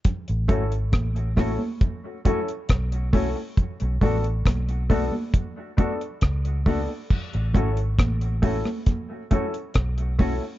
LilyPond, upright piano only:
\new Staff \with { instrumentName = "Upright piano" } { \time 4/4 \key a \major \tempo 4 = 68 r8 <cis' e' fis' a'>16 r8. <cis' e' fis' a'>16 r8 <fis' a'>16 <cis' e' fis' a'>16 r8. <cis' e' fis' a'>16 r16 | r8 <b d' fis' a'>16 r8. <b d' fis' a'>16 r8. <b d' fis' a'>16 r8. <b d' fis' a'>16 r16 | r8 <cis' e' fis' a'>16 r8. <cis' e' fis' a'>16 r8 <fis' a'>16 <cis' e' fis' a'>16 r8. <cis' e' fis' a'>16 r16 | }